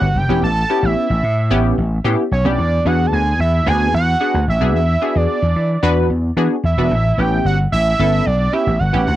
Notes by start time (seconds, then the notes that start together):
Already playing: F#5
0.01 G1
0.15 F#1 G5
0.29 E1 B3 C#4 E4 G4
0.42 A1 A5
0.70 B3 C#4 E4 G4
0.83 A1 E5
1.10 A1
1.23 A2
1.51 A1 B3 C#4 E4 G4
1.78 A1
2.04 A2 B3 C#4 E4 G4
2.32 B1 C#5
2.45 B1 B3 C#4 E4 G4 D5
2.58 E2
2.85 E2 B3 D4 F#4 G#4 F#5
3.06 A5
3.12 D2 G#5
3.39 E2 E5
3.66 D2 B3 D4 F#4 G#4 G#5
3.94 E2 F#5
4.20 B3 D4 F#4 G#4
4.34 D2
4.48 A1 E5
4.61 B1 B3 D4 F#4 G#4
4.75 E2 E5
5.02 B3 D4 F#4 G#4
5.16 E2 D5
5.42 E2
5.56 E3
5.83 E2 B3 D4 F#4 B4
6.10 E2
6.37 E3 B3 D4 F#4 G#4
6.64 E2 E5
6.77 E1 B3 D4 F#4 B4
6.91 A1
7.18 A1 B3 C#4 E4 G4 G5
7.45 G1 F#5
7.72 A1 E5
7.99 G1 B3 C#4 E4 A4
8.26 B1 D5
8.53 B3 C#4 E4 G4 E5
8.67 A1
8.79 G1 F#5
8.93 A1 B3 C#4 E4 G4
9.07 D2 F#5